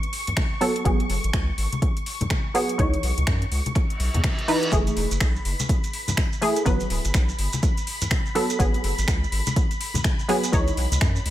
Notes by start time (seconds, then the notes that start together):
Already playing: F#3 B3 B4 C#6
0.03 closed hi-hat
0.13 open hi-hat
0.27 closed hi-hat, low conga
0.37 finger snap, kick, closed hi-hat, high conga
0.61 F#3 B3 A4, open hi-hat
0.76 closed hi-hat
0.85 G#1 F#3 B3 G#4, kick, closed hi-hat
1.00 closed hi-hat
1.10 F#1, open hi-hat
1.24 G#1, closed hi-hat
1.33 C#2, finger snap, kick, closed hi-hat
1.58 G#1, open hi-hat
1.73 closed hi-hat, high conga
1.82 kick, closed hi-hat
1.97 closed hi-hat
2.06 open hi-hat
2.21 closed hi-hat, high conga, low conga
2.30 finger snap, kick, closed hi-hat, high conga
2.54 F#3 B3 G#4, open hi-hat
2.69 closed hi-hat
2.78 C#2 E3 D#4 C#5, kick, closed hi-hat
2.94 closed hi-hat
3.03 B1, open hi-hat
3.18 C#2, closed hi-hat, high conga
3.27 F#2, finger snap, kick, closed hi-hat
3.42 closed hi-hat
3.51 C#2, open hi-hat
3.66 closed hi-hat, high conga
3.75 finger snap, kick, closed hi-hat, reverse cymbal
3.90 closed hi-hat
4.00 B1, open hi-hat
4.14 E2, closed hi-hat, high conga, low conga
4.24 finger snap, kick, closed hi-hat, high conga
4.39 closed hi-hat
4.48 E3 D#4 B4, open hi-hat
4.63 closed hi-hat
4.72 F#1 E3 A3 G#4 B5, kick, closed hi-hat, shekere
4.87 closed hi-hat, shekere
4.97 E1, open hi-hat
5.11 F#1, closed hi-hat, shekere
5.20 B1, finger snap, kick, closed hi-hat, shekere
5.35 shekere
5.45 F#1, open hi-hat
5.60 closed hi-hat, high conga, shekere
5.69 kick, closed hi-hat, shekere
5.84 closed hi-hat, shekere
5.93 open hi-hat
6.08 closed hi-hat, high conga, low conga, shekere
6.17 finger snap, kick, closed hi-hat, high conga, shekere
6.33 shekere
6.41 E3 A3 G#4, open hi-hat
6.56 closed hi-hat, shekere
6.65 G1 F#3 B3 B4, kick, closed hi-hat, shekere
6.80 closed hi-hat, shekere
6.90 D1, open hi-hat
7.05 G1, closed hi-hat, shekere
7.14 B1, finger snap, kick, closed hi-hat, shekere
7.29 shekere
7.39 G1, open hi-hat
7.53 closed hi-hat, high conga, shekere
7.63 kick, closed hi-hat, shekere
7.77 closed hi-hat, shekere
7.87 open hi-hat
8.02 closed hi-hat, low conga, shekere
8.11 finger snap, kick, closed hi-hat, high conga, shekere
8.26 shekere
8.35 F#3 B3 A4, open hi-hat
8.50 closed hi-hat, shekere
8.59 G#1 F#3 B3 G#4, kick, closed hi-hat, shekere
8.74 closed hi-hat, shekere
8.84 F#1, open hi-hat
8.98 G#1, closed hi-hat, shekere
9.08 C#2, finger snap, kick, closed hi-hat, shekere
9.24 shekere
9.32 G#1, open hi-hat
9.47 closed hi-hat, high conga, shekere
9.56 kick, closed hi-hat, shekere
9.71 closed hi-hat, shekere
9.81 open hi-hat
9.94 closed hi-hat, high conga, low conga, shekere
10.04 finger snap, kick, closed hi-hat, high conga, shekere
10.19 shekere
10.29 F#3 B3 G#4, open hi-hat
10.44 closed hi-hat, shekere
10.52 C#2 E3 D#4 C#5, kick, closed hi-hat, shekere
10.67 closed hi-hat, shekere
10.77 B1, open hi-hat
10.92 C#2, closed hi-hat, high conga, shekere
11.01 F#2, finger snap, kick, closed hi-hat, shekere
11.16 shekere
11.26 C#2, open hi-hat